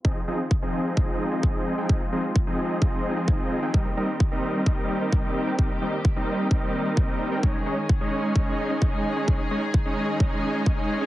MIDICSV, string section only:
0, 0, Header, 1, 2, 480
1, 0, Start_track
1, 0, Key_signature, -4, "minor"
1, 0, Tempo, 461538
1, 50, Time_signature, 4, 2, 24, 8
1, 11502, End_track
2, 0, Start_track
2, 0, Title_t, "String section"
2, 0, Program_c, 0, 48
2, 50, Note_on_c, 0, 51, 79
2, 51, Note_on_c, 0, 56, 72
2, 51, Note_on_c, 0, 60, 72
2, 51, Note_on_c, 0, 65, 89
2, 3852, Note_off_c, 0, 56, 0
2, 3852, Note_off_c, 0, 65, 0
2, 3890, Note_on_c, 0, 58, 73
2, 3890, Note_on_c, 0, 67, 88
2, 7689, Note_off_c, 0, 60, 0
2, 7692, Note_off_c, 0, 58, 0
2, 7692, Note_off_c, 0, 67, 0
2, 7730, Note_on_c, 0, 61, 76
2, 7731, Note_on_c, 0, 56, 74
2, 7731, Note_on_c, 0, 68, 88
2, 9631, Note_off_c, 0, 61, 0
2, 9650, Note_on_c, 0, 63, 74
2, 11502, Note_off_c, 0, 51, 0
2, 11502, Note_off_c, 0, 56, 0
2, 11502, Note_off_c, 0, 63, 0
2, 11502, Note_off_c, 0, 68, 0
2, 11502, End_track
0, 0, End_of_file